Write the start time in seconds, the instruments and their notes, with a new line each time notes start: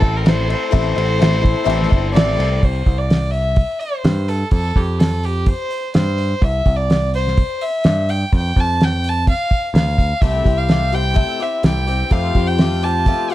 Already playing: picked electric bass A1, fiddle A4
0.00 twelve-string acoustic guitar A3 C4 E4 A4, kick, crash
0.17 fiddle A#4
0.23 twelve-string acoustic guitar A3 C4 E4 A4, snare, crash
0.29 fiddle C5
0.48 twelve-string acoustic guitar A3 C4 E4 A4, fiddle C5, crash
0.71 picked electric bass A1, twelve-string acoustic guitar A2 E3 A3 C4 E4 A4, kick, crash
0.96 picked electric bass A1, twelve-string acoustic guitar A3 C4 E4 A4, crash
1.19 twelve-string acoustic guitar A3 C4 E4 A4, snare, crash
1.41 twelve-string acoustic guitar A3 C4 E4 A4, kick
1.45 crash
1.64 picked electric bass A1, twelve-string acoustic guitar A2 E3 A3 C4 E4 A4
1.69 crash
1.82 snare
1.89 picked electric bass G1, twelve-string acoustic guitar A3 C4 E4 A4, kick
1.93 crash
2.12 picked electric bass A1, twelve-string acoustic guitar A3 C4 E4 A4, fiddle D5
2.16 snare, crash
2.37 picked electric bass C2, twelve-string acoustic guitar A3 C4 E4 A4, crash
2.63 picked electric bass C2, fiddle C5, kick, open hi-hat
2.86 picked electric bass C2, kick, open hi-hat
2.98 fiddle D5
3.10 snare, open hi-hat
3.31 fiddle E5, open hi-hat
3.56 kick, open hi-hat
3.80 fiddle C5, open hi-hat
4.04 picked electric bass G2, snare, open hi-hat
4.28 fiddle A4, open hi-hat
4.51 picked electric bass F2, fiddle A4, kick, open hi-hat
4.76 picked electric bass F2, fiddle G4, kick, open hi-hat
4.99 fiddle A4, snare, open hi-hat
5.23 fiddle G4, open hi-hat
5.46 fiddle C5, kick, open hi-hat
5.71 open hi-hat
5.94 picked electric bass G2, fiddle C5, snare, open hi-hat
6.18 open hi-hat
6.41 picked electric bass C2, fiddle E5, kick, open hi-hat
6.66 picked electric bass C2, kick, open hi-hat
6.76 fiddle D5
6.90 snare, open hi-hat
7.14 fiddle C5, open hi-hat
7.27 snare
7.37 kick, open hi-hat
7.61 fiddle E5, open hi-hat
7.84 picked electric bass G2, snare, open hi-hat
8.09 fiddle G5, open hi-hat
8.32 picked electric bass F2, kick, open hi-hat
8.37 fiddle G5
8.56 picked electric bass F2, fiddle A5, kick, open hi-hat
8.81 fiddle G5, snare, open hi-hat
9.04 open hi-hat
9.08 fiddle A5
9.27 fiddle F5, kick, open hi-hat
9.51 kick, open hi-hat
9.74 picked electric bass D2, fiddle F5, snare, open hi-hat
9.98 kick, open hi-hat
10.21 picked electric bass C2, twelve-string acoustic guitar C3 A3 C4 E4 G4, fiddle E5, kick, open hi-hat
10.44 picked electric bass C2, twelve-string acoustic guitar C4 E4 G4, kick, open hi-hat
10.57 fiddle F5
10.68 twelve-string acoustic guitar A3 C4 E4 G4, snare, open hi-hat
10.92 twelve-string acoustic guitar C4 E4 G4, fiddle G5, open hi-hat
11.14 twelve-string acoustic guitar C3 A3 C4 E4 G4, kick, open hi-hat
11.40 twelve-string acoustic guitar C4 E4 G4, fiddle E5, open hi-hat
11.63 picked electric bass C2, twelve-string acoustic guitar A3 C4 E4 G4, fiddle G5, snare, open hi-hat
11.87 twelve-string acoustic guitar C4 E4 G4, open hi-hat
12.11 picked electric bass F2, twelve-string acoustic guitar F3 A3 C4 F4 G4, fiddle F5, kick, open hi-hat
12.35 picked electric bass F2, twelve-string acoustic guitar C4 F4 G4, kick, open hi-hat
12.48 fiddle G5
12.58 twelve-string acoustic guitar A3 C4 F4 G4, snare, open hi-hat
12.83 twelve-string acoustic guitar C4 F4 G4, fiddle A5, open hi-hat
13.06 twelve-string acoustic guitar F3 A3 C4 F4 G4, kick, open hi-hat
13.29 twelve-string acoustic guitar F4 G4, open hi-hat